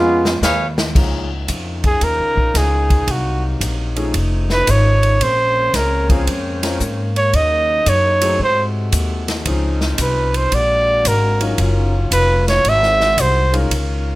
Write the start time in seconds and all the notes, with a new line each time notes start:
Already playing: F2 G#3 B3 C#4 F4
0.25 snare
0.41 D#2 G#4 B4 C#5 F5, snare, hi-hat pedal
0.78 snare
0.94 C#2 C#3 F3 G#3 A#3 C#4 D#4, kick, crash
1.48 F2, kick, hi-hat pedal, ride
1.84 G#4, kick, ride
2.01 D#2 A#4, kick, ride
2.18 C#2
2.35 A#1, kick
2.54 C#2 G#4, kick, snare, hi-hat pedal, ride
2.90 kick, ride
3.07 C2 C3 F#3, kick, ride
3.11 F#4
3.60 A#1, kick, hi-hat pedal, ride
3.96 F3 A3 C#4 D#4 G#4, ride
4.14 F1 C#3 F3 A3 D#4, kick, ride
4.50 B4, snare
4.67 G#1 C#5, kick, hi-hat pedal, ride
5.03 ride
5.20 A#1 G#3 A#3 C4 C#4 C5, kick, ride
5.73 C#2 A#4, kick, snare, hi-hat pedal, ride
6.09 F3 A#3 C4 C#4 G#4, kick, ride
6.27 F2, kick, ride
6.62 F3 A#3 C4 C#4 A#4, snare, ride
6.80 G#2, kick, hi-hat pedal
7.16 C#5, ride
7.33 D#2 C#3 F#3 D#4 D#5, kick, ride
7.86 F#2 C#5, kick, hi-hat pedal, ride
8.21 F#3 A3 C4 D#4 G#4, ride
8.39 G#2 C3 G#3 A3 F#4 C5, kick
8.92 D#2, kick, hi-hat pedal, ride
9.28 snare, ride
9.45 C#2 F3 C4 C#4 D#4 G#4, kick, ride
9.81 snare
9.98 C2 B4, kick, hi-hat pedal, ride
10.34 C5, ride
10.52 A#1 D3 G#3 A#3 F#4 D5, kick, ride
11.05 G#1 A#4, kick, hi-hat pedal, ride
11.41 F#3 C#4 D#4 F4 A#4, ride
11.58 F#1 D#3 F#3 C#4 D#4 F4 A#4, kick, ride
12.11 F1 B4, kick, hi-hat pedal, ride
12.48 C#5, snare, ride
12.64 G#1 G#3 C4 F#4, kick, ride
12.69 E5
12.83 snare
13.00 snare
13.17 C2 C5, kick, hi-hat pedal, ride
13.53 G#3 C#4 D#4 F4 A#4, ride
13.70 C#2 C#4 F4 A#4, kick, ride